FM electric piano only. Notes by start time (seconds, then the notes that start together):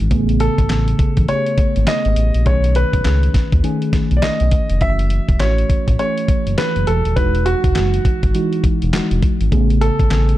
Already playing: E3 G#3 D#4 F#4 G#4
0.10 C#3 A3 B3 G#4
0.69 C#3 A3 B3 A4
1.28 C#3 A3 B3 G4
1.36 G#4
1.87 C#3 A3 B3 G#4
2.45 D#3 A3 C#4 G#4
3.04 D#3 A3 C#4 G#4
3.63 D#3 A3 C#4 G#4
4.22 D#3 A3 C#4 G#4
4.81 E3 A3 C#4 F#4
5.40 E3 A3 C#4 F#4
5.99 E3 A3 C#4 G#4
6.58 E3 A3 C#4 F#4
7.16 E3 G#3 D#4 F#4
7.75 E3 G#3 D#4 F#4
8.34 E3 G#3 D#4 F#4
8.93 E3 G#3 D#4 F#4
9.51 C#3 A3 B3 G#4
10.10 C#3 A3 B3 G#5